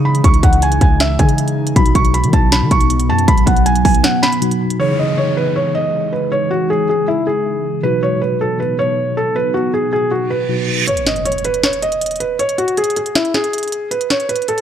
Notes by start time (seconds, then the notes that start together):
Already playing: C#3 E3 G#3 D#4 G#4
0.05 B5
0.15 closed hi-hat
0.24 C#2 C#6, kick, closed hi-hat
0.34 closed hi-hat
0.43 C#2 F#5, kick, closed hi-hat
0.53 closed hi-hat
0.62 G#5, closed hi-hat
0.72 closed hi-hat
0.81 C#2 G#5, kick, closed hi-hat
1.00 E5, snare, closed hi-hat
1.19 C#3 E3 D#4 G#4 G#5, kick, closed hi-hat
1.29 closed hi-hat
1.38 closed hi-hat
1.48 closed hi-hat
1.67 closed hi-hat
1.75 B1 B2 F#3 B3 D#4 F#4 B5, kick, closed hi-hat
1.86 closed hi-hat
1.95 B1 C#6, kick, closed hi-hat
2.05 closed hi-hat
2.14 B5, closed hi-hat
2.24 D#3, closed hi-hat
2.33 B1 A5, kick, closed hi-hat
2.52 B5, snare, closed hi-hat
2.62 D#3
2.71 B1 C#6, kick, closed hi-hat
2.81 closed hi-hat
2.90 closed hi-hat
3.00 closed hi-hat
3.09 F#2 A5
3.19 closed hi-hat
3.28 B1 B5, kick, closed hi-hat
3.38 closed hi-hat
3.46 B1 F#5, kick, closed hi-hat
3.57 closed hi-hat
3.66 G#5, closed hi-hat
3.76 closed hi-hat
3.85 B1 G#5, kick, closed hi-hat, open hi-hat
3.95 closed hi-hat
4.03 F#5, snare, closed hi-hat
4.23 B5, snare, closed hi-hat
4.32 closed hi-hat
4.41 B2 F#3 D#4 F#4, closed hi-hat
4.51 closed hi-hat
4.70 closed hi-hat
4.80 C#3 E3 G#3 D#4 G#4 C#5, downlifter
4.99 D#5
5.18 C#5
5.37 B4
5.56 C#5
5.75 D#5
6.13 B4
6.32 C#5
6.51 F#4
6.70 G#4
6.89 G#4
7.08 E4
7.27 G#4
7.83 B2 F#3 B3 D#4 F#4 B4
8.03 C#5
8.21 B4
8.41 A4
8.60 B4
8.79 C#5
9.17 A4
9.36 B4
9.54 F#4
9.74 G#4
9.93 G#4
10.11 F#4, reverse cymbal
10.30 B4
10.48 B2 F#3 D#4 F#4
10.87 C#5, closed hi-hat, impact
10.97 closed hi-hat
11.07 D#5, snare, closed hi-hat
11.16 closed hi-hat
11.25 C#5, closed hi-hat
11.32 closed hi-hat
11.38 closed hi-hat
11.45 B4, closed hi-hat
11.54 closed hi-hat
11.63 C#5, snare, closed hi-hat
11.73 closed hi-hat
11.82 D#5, closed hi-hat
11.92 closed hi-hat
12.01 closed hi-hat
12.06 closed hi-hat
12.11 closed hi-hat
12.16 closed hi-hat
12.20 B4, closed hi-hat
12.39 C#5, closed hi-hat
12.49 closed hi-hat
12.58 F#4, closed hi-hat
12.68 closed hi-hat
12.77 G#4, closed hi-hat
12.84 closed hi-hat
12.90 closed hi-hat
12.96 G#4, closed hi-hat
13.06 closed hi-hat
13.15 E4, snare, closed hi-hat
13.25 closed hi-hat
13.34 G#4, snare, closed hi-hat
13.44 closed hi-hat
13.53 closed hi-hat
13.58 closed hi-hat
13.63 closed hi-hat
13.68 closed hi-hat
13.72 closed hi-hat
13.91 B4, closed hi-hat
14.01 closed hi-hat
14.10 C#5, snare, closed hi-hat
14.20 closed hi-hat
14.29 B4, closed hi-hat
14.36 closed hi-hat
14.42 closed hi-hat
14.48 A4, closed hi-hat
14.58 closed hi-hat